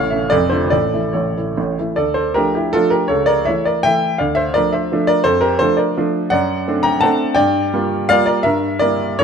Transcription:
0.00 0.12 A1 medium
0.00 0.12 A2 medium
0.00 0.13 E3 medium
0.00 0.13 A3 medium
0.00 0.14 C#4 medium
0.00 0.31 A4 medium
0.00 0.12 C#5 loud
0.00 0.11 F5 loud
0.11 0.31 E3 medium
0.11 0.31 A3 soft
0.11 0.31 C#4 medium
0.11 0.31 C#5 medium
0.11 0.31 E5 medium
0.30 0.51 F1 medium
0.30 0.51 F2 medium
0.30 0.49 A4 medium
0.30 0.51 D5 loud
0.50 0.70 D3 medium
0.50 0.70 A3 medium
0.50 0.70 F4 medium
0.50 0.70 A4 medium
0.50 0.71 C5 medium
0.70 0.93 A1 medium
0.70 0.92 A2 medium
0.70 1.12 A4 medium
0.70 1.14 D5 loud
0.94 1.13 E3 medium
0.94 1.13 A3 soft
0.94 1.14 E4 medium
1.13 1.36 A1 medium
1.13 1.36 A2 medium
1.13 1.54 A4 medium
1.13 1.57 C#5 medium
1.37 1.56 E3 soft
1.37 1.56 A3 soft
1.37 1.56 E4 soft
1.57 1.78 A1 medium
1.57 1.78 A2 medium
1.79 1.96 E3 soft
1.79 1.97 A3 soft
1.79 1.97 E4 medium
1.96 2.35 D2 medium
1.96 2.14 A4 medium
1.96 2.16 D5 medium
2.14 2.35 A4 medium
2.14 2.35 C5 medium
2.34 2.71 F3 medium
2.34 2.71 A3 medium
2.34 2.71 D4 medium
2.34 2.53 G4 medium
2.34 2.55 A#4 loud
2.55 2.73 E4 medium
2.55 2.74 G4 medium
2.73 3.06 F3 medium
2.73 3.06 A3 medium
2.73 3.06 D4 medium
2.73 2.90 F4 medium
2.73 2.91 A4 loud
2.90 3.08 G4 medium
2.90 3.08 A#4 loud
3.08 3.46 C#2 medium
3.08 3.26 A4 medium
3.08 3.27 C#5 loud
3.26 3.45 A#4 medium
3.26 3.46 D5 loud
3.45 3.82 E3 medium
3.45 3.82 A3 medium
3.45 3.82 E4 medium
3.45 3.65 C#5 medium
3.45 3.66 E5 loud
3.65 3.84 A#4 medium
3.65 3.85 D5 loud
3.83 4.16 E3 medium
3.83 4.17 A3 medium
3.83 4.17 E4 medium
3.83 4.17 E5 medium
3.83 4.19 G5 loud
4.18 4.55 D2 medium
4.18 4.36 D5 medium
4.18 4.36 F5 medium
4.35 4.54 C5 medium
4.35 4.54 E5 loud
4.54 4.88 F3 medium
4.54 4.89 A3 medium
4.54 4.89 D4 medium
4.54 4.72 A#4 medium
4.54 4.73 D5 loud
4.73 5.06 C5 medium
4.73 5.08 E5 loud
4.92 5.22 F3 medium
4.92 5.23 A3 medium
4.92 5.23 D4 medium
5.07 5.24 A#4 medium
5.07 5.25 D5 loud
5.24 5.59 F2 medium
5.24 5.41 A4 medium
5.24 5.42 C5 loud
5.41 5.59 G4 medium
5.41 5.59 A#4 loud
5.59 5.93 F3 medium
5.59 5.94 A3 medium
5.59 5.94 D4 medium
5.59 5.77 A4 medium
5.59 5.78 C5 loud
5.77 5.95 A#4 medium
5.77 5.96 D5 medium
5.97 6.29 F3 medium
5.97 6.29 A3 medium
5.97 6.29 D4 medium
6.30 6.66 F#2 medium
6.30 6.81 D5 loud
6.30 6.84 F#5 loud
6.68 6.99 A3 medium
6.68 6.99 C4 medium
6.68 7.00 D4 medium
6.83 7.01 G5 medium
6.83 7.01 A#5 loud
7.01 7.34 A3 medium
7.01 7.34 C4 medium
7.01 7.34 D4 medium
7.01 7.34 F#5 loud
7.01 7.36 A5 loud
7.35 7.72 G2 medium
7.35 8.06 D5 loud
7.35 8.09 G5 loud
7.74 8.07 G3 medium
7.74 8.07 A#3 medium
7.74 8.07 F4 medium
8.09 8.42 G3 medium
8.09 8.42 A#3 medium
8.09 8.42 F4 medium
8.09 8.24 D5 loud
8.09 8.27 F5 loud
8.26 8.43 A#4 medium
8.26 8.44 D5 loud
8.43 8.81 G2 medium
8.43 8.79 A#4 medium
8.43 8.81 E5 loud
8.79 9.17 G3 medium
8.79 9.17 A#3 medium
8.79 9.17 E4 medium
8.79 9.17 A#4 medium
8.79 9.19 D5 loud
9.19 9.24 A2 medium
9.19 9.24 G3 medium
9.19 9.24 A4 medium
9.19 9.24 C#5 loud

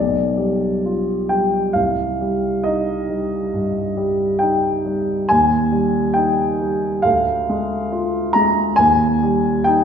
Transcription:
0.00 1.72 B1 soft
0.00 1.30 D5 medium
0.37 1.12 G3 soft
0.85 1.59 F4 soft
1.29 1.77 G3 soft
1.29 1.76 G5 medium
1.73 3.49 C2 soft
1.73 2.65 F5 medium
2.21 2.93 G3 soft
2.64 3.36 D#4 soft
2.64 4.41 D#5 medium
3.10 3.80 G3 soft
3.53 4.24 G2 soft
3.97 4.69 G3 soft
4.39 5.13 D#4 soft
4.39 5.29 G5 medium
4.86 5.30 G3 soft
5.29 7.02 D#2 soft
5.29 6.16 G#5 medium
5.72 6.43 G3 soft
6.14 6.88 D#4 soft
6.14 7.04 G5 medium
6.61 7.05 G3 soft
7.02 8.74 D2 soft
7.02 8.33 F5 medium
7.49 8.18 G#3 soft
7.92 8.61 F4 soft
8.33 8.79 G#3 soft
8.33 8.78 A#5 medium
8.76 9.84 D#2 soft
8.76 9.65 G#5 medium
9.23 9.84 G3 soft
9.64 9.84 D#4 soft
9.64 9.84 G5 medium

